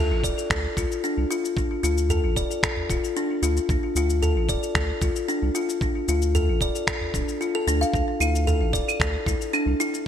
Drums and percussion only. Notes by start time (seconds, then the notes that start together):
0.24 kick, shaker
0.38 shaker
0.50 finger snap, kick, shaker
0.77 kick, shaker
0.92 shaker
1.04 shaker
1.31 shaker
1.45 shaker
1.57 kick, shaker
1.84 shaker
1.98 shaker
2.09 udu, shaker
2.36 kick, shaker
2.51 shaker
2.63 finger snap, kick, shaker
2.77 udu
2.90 kick, shaker
3.04 shaker
3.17 shaker
3.43 shaker
3.57 shaker
3.69 kick, shaker
3.96 shaker
4.10 shaker
4.22 udu, shaker
4.49 kick, shaker
4.63 shaker
4.75 finger snap, kick, shaker
5.02 kick, shaker
5.16 shaker
5.29 shaker
5.55 shaker
5.69 shaker
5.81 kick, shaker
6.08 shaker
6.22 shaker
6.35 udu, shaker
6.61 kick, shaker
6.75 shaker
6.87 finger snap, kick, shaker
7.01 udu
7.14 kick, shaker
7.29 shaker
7.42 shaker
7.68 shaker
7.82 shaker
7.94 kick, shaker
8.21 claves, shaker
8.35 shaker
8.47 udu, shaker
8.73 kick, shaker
8.88 claves, shaker
9.00 finger snap, kick, shaker
9.26 kick, shaker
9.41 shaker
9.54 claves, shaker
9.80 shaker
9.94 shaker